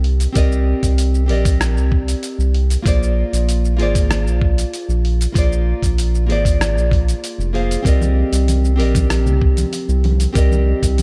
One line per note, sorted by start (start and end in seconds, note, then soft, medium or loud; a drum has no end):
0.00 0.27 C2 medium
0.00 0.30 C4 medium
0.00 0.31 G4 medium
0.00 0.32 A#4 medium
0.00 0.33 D5 medium
0.00 0.34 D#5 medium
0.04 open hi-hat soft
0.20 open hi-hat soft
0.20 shaker medium
0.33 0.74 C2 medium
0.33 1.24 C4 medium
0.33 1.25 G4 medium
0.33 1.26 A#4 medium
0.33 1.26 D5 medium
0.33 kick loud
0.33 open hi-hat medium
0.33 shaker medium
0.38 1.27 D#5 loud
0.52 shaker soft
0.83 1.30 C2 medium
0.83 kick medium
0.83 open hi-hat soft
0.83 shaker medium
0.98 open hi-hat medium
0.98 shaker medium
1.14 shaker soft
1.26 1.78 A#1 medium
1.26 2.80 C4 medium
1.26 2.81 G4 medium
1.26 2.82 A#4 medium
1.26 open hi-hat soft
1.31 2.83 D5 medium
1.31 2.83 D#5 medium
1.45 kick loud
1.45 open hi-hat soft
1.45 shaker medium
1.61 cross-stick medium
1.61 open hi-hat soft
1.61 shaker soft
1.76 2.14 C2 medium
1.76 shaker soft
1.92 kick loud
2.08 open hi-hat soft
2.08 shaker medium
2.23 open hi-hat medium
2.23 shaker medium
2.39 2.77 C2 medium
2.39 shaker soft
2.54 open hi-hat soft
2.70 open hi-hat soft
2.70 shaker medium
2.82 3.24 A#1 loud
2.82 3.74 A#3 medium
2.82 3.75 F4 medium
2.82 3.76 G#4 medium
2.82 kick loud
2.82 open hi-hat soft
2.87 3.76 C5 medium
2.87 3.77 D5 loud
2.87 shaker medium
3.03 shaker soft
3.33 3.81 A#1 medium
3.33 open hi-hat soft
3.33 shaker medium
3.49 open hi-hat soft
3.49 shaker medium
3.65 shaker soft
3.77 4.28 G#1 medium
3.77 5.31 A#3 medium
3.77 5.32 F4 medium
3.77 5.32 G#4 medium
3.77 open hi-hat soft
3.81 5.33 C5 medium
3.81 5.34 D5 medium
3.95 kick loud
3.95 open hi-hat soft
3.95 shaker medium
4.11 cross-stick medium
4.11 open hi-hat soft
4.11 shaker medium
4.26 4.64 A#1 medium
4.26 shaker soft
4.41 kick loud
4.58 open hi-hat soft
4.58 shaker medium
4.74 open hi-hat medium
4.74 shaker medium
4.89 5.27 A#1 medium
4.89 shaker soft
5.05 open hi-hat soft
5.21 open hi-hat soft
5.21 shaker medium
5.32 5.74 A#1 medium
5.32 6.24 A#3 medium
5.32 6.25 F4 medium
5.32 6.26 G#4 medium
5.32 kick loud
5.32 open hi-hat soft
5.32 shaker medium
5.37 6.26 C5 medium
5.37 6.27 D5 loud
5.52 shaker soft
5.82 6.30 A#1 medium
5.82 kick medium
5.82 open hi-hat soft
5.82 shaker medium
5.98 open hi-hat soft
5.98 shaker medium
6.15 shaker soft
6.26 6.77 G#1 medium
6.26 7.50 A#3 medium
6.26 7.51 F4 medium
6.26 7.51 G#4 medium
6.26 open hi-hat soft
6.31 7.52 C5 medium
6.31 7.53 D5 loud
6.45 kick loud
6.45 open hi-hat soft
6.45 shaker medium
6.61 cross-stick medium
6.61 open hi-hat soft
6.61 shaker medium
6.76 7.14 A#1 medium
6.76 shaker soft
6.91 kick loud
6.91 open hi-hat soft
7.08 open hi-hat soft
7.08 shaker medium
7.24 open hi-hat soft
7.24 shaker medium
7.38 7.77 F1 medium
7.38 shaker soft
7.53 7.81 A#3 medium
7.53 7.82 F4 medium
7.53 7.82 G#4 medium
7.53 7.82 C5 medium
7.53 7.83 F5 medium
7.53 open hi-hat soft
7.71 open hi-hat soft
7.71 shaker medium
7.83 8.23 C2 medium
7.83 8.74 C4 medium
7.83 8.75 G4 medium
7.83 8.76 A#4 medium
7.83 kick loud
7.83 open hi-hat soft
7.83 shaker medium
7.87 8.76 D5 medium
7.87 8.77 D#5 medium
8.01 high conga medium
8.01 shaker soft
8.32 8.80 C2 medium
8.32 open hi-hat soft
8.32 shaker medium
8.48 open hi-hat medium
8.48 high conga medium
8.48 shaker soft
8.65 shaker soft
8.76 9.27 A#1 loud
8.76 10.30 C4 medium
8.76 10.31 G4 medium
8.76 10.32 A#4 medium
8.76 open hi-hat soft
8.80 10.32 D5 medium
8.80 10.33 D#5 medium
8.95 kick loud
8.95 open hi-hat soft
8.95 high conga medium
8.95 shaker medium
9.10 cross-stick medium
9.10 open hi-hat soft
9.10 shaker soft
9.26 9.64 C2 medium
9.26 low conga medium
9.26 shaker soft
9.41 kick loud
9.57 open hi-hat soft
9.57 high conga medium
9.57 shaker medium
9.73 open hi-hat medium
9.73 shaker medium
9.89 10.27 C2 medium
9.89 shaker soft
10.04 open hi-hat soft
10.04 high conga medium
10.20 open hi-hat soft
10.20 shaker medium
10.33 10.74 C2 medium
10.33 11.02 C4 medium
10.33 11.02 G4 medium
10.33 11.02 A#4 medium
10.33 kick loud
10.33 open hi-hat soft
10.33 shaker medium
10.37 11.02 D5 medium
10.37 11.02 D#5 loud
10.52 high conga medium
10.52 shaker soft
10.82 11.02 C2 medium
10.82 kick medium
10.82 open hi-hat soft
10.82 shaker medium
10.98 open hi-hat medium
10.98 high conga medium
10.98 shaker soft